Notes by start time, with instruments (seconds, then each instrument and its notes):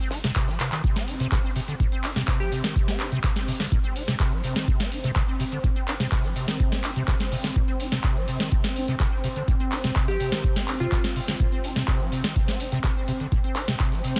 0.00 acid bass C4
0.11 acid bass D#4, snare, closed hi-hat, open hi-hat
0.24 acid bass C3, snare, closed hi-hat
0.35 acid bass C3, kick, snare, clap, closed hi-hat
0.48 acid bass F3, snare, closed hi-hat
0.60 acid bass C3, clap, closed hi-hat, open hi-hat
0.72 acid bass D#3, clap, closed hi-hat
0.84 acid bass C3, analog synth pad C4, kick, closed hi-hat
0.96 acid bass C4, snare, closed hi-hat
1.08 acid bass D#4, closed hi-hat, open hi-hat
1.20 acid bass C3, snare, closed hi-hat
1.32 acid bass C3, kick, snare, clap, closed hi-hat
1.44 acid bass C4
1.56 acid bass C3, closed hi-hat, open hi-hat
1.68 acid bass D3, closed hi-hat
1.80 acid bass A#2, kick, closed hi-hat
1.92 acid bass C4, closed hi-hat
2.04 acid bass D#4, clap, closed hi-hat, open hi-hat
2.16 acid bass C3, snare, closed hi-hat
2.28 acid bass C3, kick, snare, clap, closed hi-hat
2.39 acid bass F3, synth pluck G4, snare, closed hi-hat
2.52 acid bass C3, closed hi-hat, open hi-hat
2.64 acid bass D#3, snare, closed hi-hat
2.76 acid bass C3, kick, closed hi-hat
2.88 acid bass C4, snare, closed hi-hat
2.99 acid bass D#4, clap, closed hi-hat, open hi-hat
3.12 acid bass C3, closed hi-hat
3.24 acid bass C3, kick, snare, clap, closed hi-hat
3.36 acid bass C4, snare, closed hi-hat
3.48 acid bass C3, open hi-hat
3.60 acid bass D3, snare, closed hi-hat
3.72 acid bass A#2, kick, closed hi-hat
3.84 acid bass C4, closed hi-hat
3.96 acid bass D#4, closed hi-hat, open hi-hat
4.08 acid bass C3, snare, closed hi-hat
4.19 acid bass C3, kick, snare, clap, closed hi-hat
4.32 acid bass F3, closed hi-hat
4.44 acid bass C3, closed hi-hat, open hi-hat
4.56 acid bass D#3, snare, closed hi-hat
4.68 acid bass C3, kick, closed hi-hat
4.80 acid bass C4, snare, closed hi-hat
4.92 acid bass D#4, closed hi-hat, open hi-hat
5.04 acid bass C3, snare, closed hi-hat
5.15 acid bass C3, kick, snare, clap, closed hi-hat
5.28 acid bass C4
5.40 acid bass C3, closed hi-hat, open hi-hat
5.52 acid bass D3, closed hi-hat
5.64 acid bass A#2, kick, closed hi-hat
5.76 acid bass C4, closed hi-hat
5.88 acid bass D#4, clap, closed hi-hat, open hi-hat
6.00 acid bass C3, snare, closed hi-hat
6.12 acid bass C3, kick, snare, clap, closed hi-hat
6.24 acid bass F3, snare, closed hi-hat
6.36 acid bass C3, closed hi-hat, open hi-hat
6.48 acid bass D#3, snare, closed hi-hat
6.60 acid bass C3, kick, closed hi-hat
6.72 acid bass C4, snare, closed hi-hat
6.84 acid bass D#4, clap, closed hi-hat, open hi-hat
6.96 acid bass C3, closed hi-hat
7.08 acid bass C3, kick, snare, clap, closed hi-hat
7.20 acid bass C4, snare, closed hi-hat
7.32 acid bass C3, open hi-hat
7.44 acid bass D3, snare, closed hi-hat
7.56 acid bass A#2, kick, closed hi-hat
7.68 acid bass C4, closed hi-hat
7.80 acid bass D#4, closed hi-hat, open hi-hat
7.92 acid bass C3, snare, closed hi-hat
8.04 acid bass C3, kick, snare, clap, closed hi-hat
8.16 acid bass F3, closed hi-hat
8.28 acid bass C3, closed hi-hat, open hi-hat
8.40 acid bass D#3, snare, closed hi-hat
8.52 acid bass C3, kick, closed hi-hat
8.64 acid bass C4, snare, closed hi-hat
8.76 acid bass D#4, closed hi-hat, open hi-hat
8.88 acid bass C3, snare, closed hi-hat
9.00 acid bass C3, kick, snare, clap, closed hi-hat
9.12 acid bass C4
9.24 acid bass C3, closed hi-hat, open hi-hat
9.36 acid bass D3, closed hi-hat
9.48 acid bass A#2, kick, closed hi-hat
9.60 acid bass C4, closed hi-hat
9.72 acid bass D#4, clap, closed hi-hat, open hi-hat
9.84 acid bass C3, snare, closed hi-hat
9.95 acid bass C3, kick, snare, clap, closed hi-hat
10.08 acid bass F3, synth pluck G4, snare, closed hi-hat
10.20 acid bass C3, closed hi-hat, open hi-hat
10.32 acid bass D#3, snare, closed hi-hat
10.43 acid bass C3, kick, closed hi-hat
10.56 acid bass C4, snare, closed hi-hat
10.68 acid bass D#4, clap, closed hi-hat, open hi-hat
10.80 acid bass C3, synth pluck F4, closed hi-hat
10.92 acid bass C3, kick, snare, clap, closed hi-hat
11.04 acid bass C4, snare, closed hi-hat
11.16 acid bass C3, open hi-hat
11.28 acid bass D3, snare, closed hi-hat
11.40 acid bass A#2, kick, closed hi-hat
11.52 acid bass C4, closed hi-hat
11.64 acid bass D#4, closed hi-hat, open hi-hat
11.76 acid bass C3, snare, closed hi-hat
11.88 acid bass C3, kick, snare, clap, closed hi-hat
12.00 acid bass F3, closed hi-hat
12.12 acid bass C3, closed hi-hat, open hi-hat
12.24 acid bass D#3, snare, closed hi-hat
12.36 acid bass C3, kick, closed hi-hat
12.48 acid bass C4, snare, closed hi-hat
12.60 acid bass D#4, closed hi-hat, open hi-hat
12.72 acid bass C3, snare, closed hi-hat
12.84 acid bass C3, kick, snare, clap, closed hi-hat
12.96 acid bass C4
13.08 acid bass C3, closed hi-hat, open hi-hat
13.20 acid bass D3, closed hi-hat
13.32 acid bass A#2, kick, closed hi-hat
13.44 acid bass C4, closed hi-hat
13.55 acid bass D#4, snare, clap, closed hi-hat, open hi-hat
13.68 acid bass C3, snare, closed hi-hat
13.80 acid bass C3, kick, snare, clap, closed hi-hat
13.92 acid bass F3, snare, closed hi-hat
14.04 acid bass C3, closed hi-hat, open hi-hat
14.16 acid bass D#3, snare, closed hi-hat